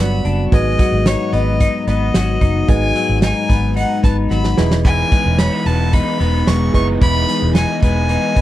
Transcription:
0.00 0.20 G1 loud
0.00 0.52 G2 medium
0.00 0.79 F#3 medium
0.00 0.54 G3 medium
0.00 1.33 B3 medium
0.00 0.24 D4 medium
0.00 0.54 D4 medium
0.00 0.51 F#4 soft
0.00 0.53 B4 medium
0.00 0.54 D5 medium
0.00 0.38 B5 medium
0.25 0.47 F#1 medium
0.25 0.57 D4 medium
0.25 closed hi-hat medium
0.52 0.74 G#1 loud
0.52 2.67 G#2 medium
0.52 2.64 F#4 medium
0.52 2.65 G#4 medium
0.52 2.65 B4 medium
0.52 1.08 D#5 loud
0.52 2.65 D#5 medium
0.52 kick loud
0.52 closed hi-hat medium
0.79 2.13 F#3 medium
0.79 kick loud
0.79 closed hi-hat medium
0.92 1.15 G#1 medium
1.06 1.60 D#4 medium
1.06 1.34 C#5 loud
1.06 snare loud
1.06 closed hi-hat loud
1.33 1.66 G#1 loud
1.33 1.87 B3 medium
1.33 1.87 D#5 loud
1.33 closed hi-hat medium
1.60 2.41 D#4 medium
1.60 kick medium
1.60 closed hi-hat medium
1.87 2.09 G#1 loud
1.87 3.49 B3 medium
1.87 2.71 D#5 loud
1.87 snare soft
1.87 closed hi-hat medium
2.14 2.37 G#1 medium
2.14 2.94 F#3 medium
2.14 snare loud
2.14 closed hi-hat medium
2.41 2.63 F#1 medium
2.41 3.22 D#4 medium
2.41 kick medium
2.41 closed hi-hat medium
2.68 2.91 G#1 loud
2.68 4.63 G#2 medium
2.68 4.54 F#4 medium
2.68 4.54 G#4 medium
2.68 4.54 B4 medium
2.68 4.55 D#5 medium
2.68 3.23 G#5 loud
2.68 kick loud
2.68 closed hi-hat medium
2.95 4.30 F#3 medium
2.95 closed hi-hat medium
3.09 3.31 G#1 medium
3.22 3.76 D#4 medium
3.22 3.73 G#5 loud
3.22 snare loud
3.22 closed hi-hat loud
3.49 3.83 G#1 medium
3.49 4.03 B3 medium
3.49 kick medium
3.49 closed hi-hat medium
3.76 4.88 D#4 medium
3.76 4.02 F#5 loud
3.76 closed hi-hat medium
4.03 4.26 G#1 loud
4.03 5.42 B3 medium
4.03 4.16 A5 medium
4.03 kick loud
4.03 snare soft
4.03 closed hi-hat medium
4.30 4.53 G#1 medium
4.30 4.63 F#3 medium
4.30 4.69 B5 medium
4.30 snare medium
4.44 snare medium
4.57 5.02 E1 loud
4.57 4.85 E3 medium
4.57 6.70 E4 medium
4.57 6.70 G#4 medium
4.57 6.71 B4 medium
4.57 6.71 D#5 medium
4.57 snare medium
4.71 snare loud
4.85 7.01 E3 medium
4.85 5.12 E3 medium
4.85 5.12 G#3 medium
4.85 5.12 B3 medium
4.85 5.10 D#4 medium
4.85 5.40 G#5 loud
4.85 kick loud
4.85 closed hi-hat medium
5.11 6.46 G#3 medium
5.11 5.38 G#3 soft
5.11 5.38 B3 medium
5.11 5.39 D#4 medium
5.11 kick loud
5.11 closed hi-hat medium
5.26 5.48 E1 medium
5.38 5.66 E3 medium
5.38 5.66 G#3 medium
5.38 5.66 B3 medium
5.38 5.53 C#4 medium
5.38 5.64 D#4 medium
5.38 5.68 B5 loud
5.38 snare loud
5.38 closed hi-hat loud
5.53 5.92 D#4 medium
5.66 5.99 E1 medium
5.66 5.92 G#3 soft
5.66 6.19 B3 medium
5.66 5.93 B3 soft
5.66 5.93 D#4 medium
5.66 5.95 A5 loud
5.66 closed hi-hat medium
5.92 6.20 E3 medium
5.92 6.20 G#3 medium
5.92 6.19 B3 medium
5.92 6.73 D#4 medium
5.92 6.18 D#4 medium
5.92 6.49 B5 loud
5.92 kick medium
5.92 closed hi-hat medium
6.19 6.43 E1 loud
6.19 6.46 G#3 medium
6.19 6.46 B3 soft
6.19 7.81 B3 medium
6.19 6.47 D#4 medium
6.19 closed hi-hat medium
6.46 6.70 E1 loud
6.46 6.74 E3 medium
6.46 6.74 G#3 medium
6.46 7.27 G#3 medium
6.46 6.73 B3 medium
6.46 6.72 D#4 medium
6.46 6.74 C#6 loud
6.46 snare loud
6.46 closed hi-hat medium
6.73 6.97 F#1 medium
6.73 7.00 G#3 soft
6.73 7.01 B3 medium
6.73 7.01 D#4 medium
6.73 7.54 D#4 medium
6.73 8.41 E4 medium
6.73 8.41 G#4 medium
6.73 8.41 B4 medium
6.73 8.41 D#5 medium
6.73 6.87 C#6 loud
6.73 kick medium
6.73 closed hi-hat medium
7.01 7.24 E1 medium
7.01 7.28 E3 medium
7.01 8.41 E3 medium
7.01 7.28 G#3 medium
7.01 7.27 B3 loud
7.01 7.26 D#4 medium
7.01 7.52 B5 loud
7.01 kick loud
7.01 closed hi-hat medium
7.28 8.41 G#3 medium
7.28 7.54 G#3 soft
7.28 7.55 B3 soft
7.28 7.55 D#4 medium
7.28 closed hi-hat medium
7.42 7.64 E1 loud
7.55 7.82 E3 medium
7.55 7.83 G#3 medium
7.55 7.82 B3 loud
7.55 8.09 D#4 medium
7.55 7.80 D#4 loud
7.55 7.81 G#5 loud
7.55 snare loud
7.55 closed hi-hat medium
7.82 8.16 E1 loud
7.82 8.08 G#3 soft
7.82 8.36 B3 medium
7.82 8.09 B3 medium
7.82 8.09 D#4 soft
7.82 8.41 G#5 loud
7.82 kick loud
7.82 closed hi-hat medium
8.09 8.36 E3 medium
8.09 8.36 G#3 medium
8.09 8.36 B3 medium
8.09 8.41 D#4 medium
8.09 8.34 D#4 medium
8.09 closed hi-hat medium
8.35 8.41 E1 loud
8.35 8.41 G#3 medium
8.35 8.41 B3 soft
8.35 8.41 B3 medium
8.35 8.41 D#4 medium
8.35 kick medium
8.35 closed hi-hat medium

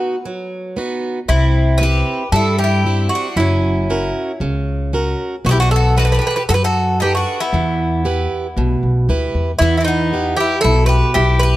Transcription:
0.00 0.15 B3 soft
0.00 0.16 D#4 soft
0.00 0.15 F#4 soft
0.00 0.22 F#4 medium
0.00 0.21 B4 medium
0.25 0.76 F#3 medium
0.77 1.18 B3 soft
0.77 1.18 D#4 soft
0.77 1.19 F#4 soft
1.28 2.01 C2 medium
1.28 1.79 C3 medium
1.28 1.77 C4 medium
1.28 1.82 E4 medium
1.78 2.22 C4 soft
1.78 2.23 E4 soft
1.78 2.27 B4 medium
1.82 2.23 G4 soft
1.82 2.30 G4 medium
2.32 3.05 G2 medium
2.32 2.84 G3 medium
2.32 2.58 E4 medium
2.32 2.58 A4 loud
2.58 3.07 G4 medium
2.64 3.10 E4 medium
2.86 3.27 C4 soft
2.86 3.27 E4 soft
2.86 3.27 G4 medium
3.09 3.37 F#4 medium
3.15 3.37 D4 medium
3.36 4.09 F#1 loud
3.36 3.87 F#3 medium
3.36 4.38 C#4 medium
3.36 4.37 E4 medium
3.90 4.31 C#4 soft
3.90 4.31 F#4 soft
3.90 4.31 A#4 medium
4.40 5.13 C#2 medium
4.40 4.91 C#3 medium
4.93 5.35 C#4 soft
4.93 5.35 F#4 soft
4.93 5.35 A#4 soft
5.45 6.17 B1 medium
5.45 5.95 B3 medium
5.45 5.50 F#4 medium
5.49 5.52 D#4 medium
5.49 5.58 E4 medium
5.49 5.57 G4 medium
5.60 5.72 D4 medium
5.60 5.71 F#4 medium
5.71 5.97 A4 medium
5.76 5.98 F#4 medium
5.97 6.05 F#4 medium
5.97 6.38 A4 soft
5.97 6.38 B4 soft
5.97 6.04 B4 medium
5.97 6.39 D#5 medium
6.05 6.13 G4 medium
6.05 6.11 B4 medium
6.12 6.20 G4 medium
6.12 6.18 B4 medium
6.19 6.27 G4 medium
6.19 6.26 B4 medium
6.27 6.36 G4 medium
6.27 6.34 B4 medium
6.36 6.42 G4 medium
6.36 6.42 B4 medium
6.49 7.22 F#2 medium
6.49 7.00 F#3 medium
6.49 6.55 F#4 medium
6.49 6.54 A4 loud
6.54 6.62 G4 medium
6.54 6.62 B4 medium
6.64 6.99 F#4 medium
6.64 6.99 A4 loud
7.00 7.12 D#4 medium
7.00 7.14 G4 medium
7.00 7.43 A4 soft
7.00 7.43 B4 soft
7.00 7.44 D#5 medium
7.15 7.39 D4 medium
7.15 7.38 F#4 medium
7.40 9.05 B3 medium
7.40 9.05 E4 medium
7.53 8.25 E2 medium
7.53 8.04 E3 medium
8.05 8.46 E4 soft
8.05 8.47 G4 soft
8.05 8.47 B4 medium
8.57 8.75 B1 medium
8.57 9.07 B2 medium
8.83 9.06 B1 medium
9.09 9.32 D2 medium
9.09 9.51 E4 soft
9.09 9.50 G4 soft
9.09 9.51 B4 medium
9.35 9.58 E2 medium
9.59 10.33 E2 medium
9.59 10.11 E3 medium
9.59 9.79 B3 medium
9.59 9.76 E4 medium
9.77 9.87 C4 medium
9.77 9.84 E4 medium
9.84 10.35 B3 medium
9.84 10.34 D#4 medium
10.13 10.54 E4 soft
10.13 10.55 G4 soft
10.13 10.54 B4 medium
10.37 10.63 E4 medium
10.37 10.60 G4 medium
10.61 11.00 B1 medium
10.61 11.14 B2 medium
10.61 10.88 E4 medium
10.61 10.86 A4 loud
10.86 11.14 G4 medium
10.86 11.12 B4 medium
11.14 11.52 B1 medium
11.14 11.40 E4 medium
11.14 11.57 E4 medium
11.14 11.39 G4 loud
11.14 11.57 G4 soft
11.14 11.57 B4 soft
11.39 11.57 G4 medium
11.39 11.57 B4 medium

